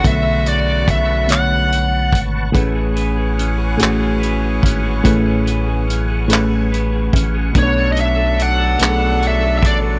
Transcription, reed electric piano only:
X:1
M:6/8
L:1/8
Q:3/8=48
K:A
V:1 name="Reed electric piano"
[B,,D,A,e]2 z [B,,D,A,c]2 z | [A,,CGB]2 z [A,,CFG]2 z | [A,,CGB]2 z [A,,CGB]2 z | [B,,A,DBc]2 z [B,,A,DGA]2 z |]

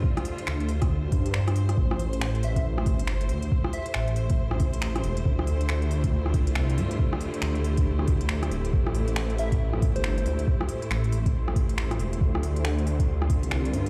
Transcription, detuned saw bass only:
X:1
M:4/4
L:1/16
Q:"Swing 16ths" 1/4=138
K:Dm
V:1 name="Detuned saw bass" clef=bass
z4 D,,6 G,,6 | A,,,8- A,,,3 G,,,3 D,,2 | z4 A,,,8- A,,,2 E,,,2 | D,,8- D,,3 C,,3 G,,2 |
z4 D,,8- D,,2 D,,,2 | A,,,8- A,,,3 G,,,3 D,,2 | z4 A,,,8- A,,,2 E,,,2 | D,,8- D,,3 C,,3 G,,2 |]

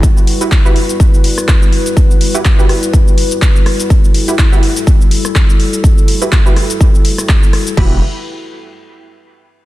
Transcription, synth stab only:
X:1
M:4/4
L:1/16
Q:"Swing 16ths" 1/4=124
K:Em
V:1 name="Synth stab"
z3 [EFGB]2 [EFGB] z8 z2 | z3 [EFGB]2 [EFGB]2 z8 z | z3 [EFGB]2 [EFGB] z8 z2 | z3 [EFGB]2 [EFGB]2 z8 z |
[EFGB]2 z12 z2 |]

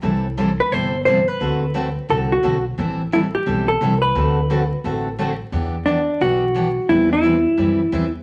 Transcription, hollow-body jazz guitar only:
X:1
M:4/4
L:1/8
Q:"Swing" 1/4=175
K:Dmix
V:1 name="Hollow-body jazz guitar"
z3 B c2 c B- | B4 A F2 z | z2 E G2 A2 B- | B6- B z |
z2 D2 F4 | E E6 z |]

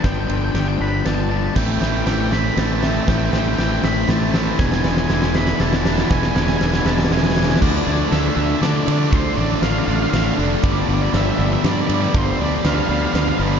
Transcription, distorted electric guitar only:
X:1
M:3/4
L:1/8
Q:1/4=119
K:Ddor
V:1 name="Distorted electric guitar" clef=bass
z6 | [A,,E,A,] [A,,E,A,] [A,,E,A,] [A,,E,A,] [A,,E,A,] [A,,E,A,] | [A,,E,A,] [A,,E,A,] [A,,E,A,] [A,,E,A,] [A,,E,A,] [A,,E,A,] | [E,,B,,E,] [E,,B,,E,] [E,,B,,E,] [E,,B,,E,] [E,,B,,E,] [E,,B,,E,] |
[E,,B,,E,] [E,,B,,E,] [E,,B,,E,] [E,,B,,E,] [E,,B,,E,] [E,,B,,E,] | [D,A,D] [D,A,D] [D,A,D] [D,A,D] [D,A,D] [D,A,D] | [D,A,D] [D,A,D] [D,A,D] [D,A,D] [D,A,D] [D,A,D] | [G,,D,G,] [G,,D,G,] [G,,D,G,] [G,,D,G,] [G,,D,G,] [G,,D,G,] |
[G,,D,G,] [G,,D,G,] [G,,D,G,] [G,,D,G,] [G,,D,G,] [G,,D,G,] |]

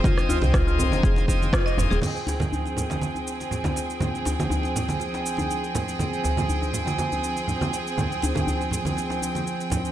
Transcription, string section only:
X:1
M:4/4
L:1/8
Q:"Swing 16ths" 1/4=121
K:Fm
V:1 name="String section"
[F,Ccg]8 | [F,CAg]8- | [F,CAg]8- | [F,CAg]8- |
[F,CAg]8 |]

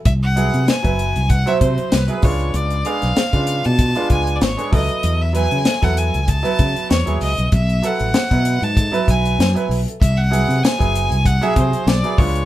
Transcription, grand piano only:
X:1
M:4/4
L:1/16
Q:"Swing 16ths" 1/4=96
K:G#phr
V:1 name="Grand piano"
z2 [F,B,EG]2 [EB] [F,B,EB]2 z [EB] [B,,F,E^B]3 z [F,=B,EG] [G,B,=D^E]2- | [G,B,=D^E] z [G,B,DG]2 [DG] [G,B,DE]2 z [DE] [G,B,DE]3 z [G,B,DG] [F,B,=EA]2- | [F,B,EA] z [F,B,EB]2 [EA] [F,B,EA]2 z [EG] [F,B,EB]3 z [F,B,EG]2 [EB] | z2 [F,B,EA]2 [EF] [F,B,EB]2 z [EA] [F,B,EB]3 z [F,B,EB]2 [EA] |
z2 [F,B,EG]2 [EG] [F,B,EG]2 z [EG] [B,,F,EG]3 z [F,B,EG] [G,B,=D^E]2 |]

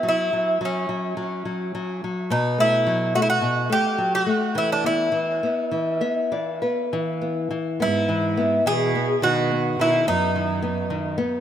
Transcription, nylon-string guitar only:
X:1
M:4/4
L:1/8
Q:1/4=105
K:Em
V:1 name="Nylon-string guitar" clef=bass
F, F, F, F, F, F, F, F, | B,, A, F, A, B,, A, F, A, | E, B, E, B, E, [B,e] [E,d] [B,B] | [K:E] E, B, E, B, E, B, E, B, |
D, B, D, B, D, B, D, B, |]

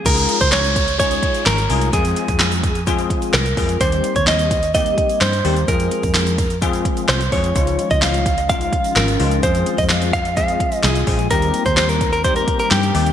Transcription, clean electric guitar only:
X:1
M:4/4
L:1/16
Q:1/4=128
K:Fm
V:1 name="Clean electric guitar"
B3 c d4 d4 B4 | A8 z4 B4 | c3 d e4 e4 c4 | B8 z4 c2 d2- |
d3 e f4 f4 B4 | c3 e f2 f2 f4 A4 | B3 c c B2 B c B2 B G4 |]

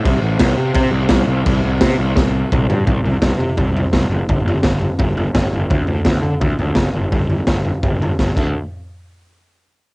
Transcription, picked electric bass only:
X:1
M:4/4
L:1/8
Q:1/4=169
K:Clyd
V:1 name="Picked electric bass" clef=bass
C,, A,,, C,, C, C, C,, C,, C,, | C,, C,, C, C,, C,,2 C,, G,, | C,, C,, C,, C, C,, C,, C,, F,,, | G,,, G,,, G,,,2 G,,, G,,, G,,, G,,, |
D,, D,, D,, D, D,, D,, F,,, G,,, | G,,, G,,, G,,,2 G,,, G,,, G,,, D,, | z8 |]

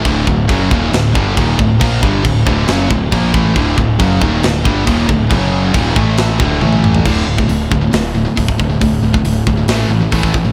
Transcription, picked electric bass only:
X:1
M:4/4
L:1/8
Q:1/4=137
K:none
V:1 name="Picked electric bass" clef=bass
D,,, D,,, ^F,,, _E,,, D,,, G,,, E,,, D,,, | _B,,, G,,, D,,, D,,, ^F,,, D,,, B,,, A,,, | D,,, D,,, ^F,,, _E,,, D,,, G,,, E,,, D,,, | ^F,,,2 _E,,, A,,,2 D,,, A,,,2 |
D,,, D,,, D,,, D,,, D,,,2 D,,, D,,, | D,,, D,,, D,,, D,,, A,,, A,,, A,,, A,,, |]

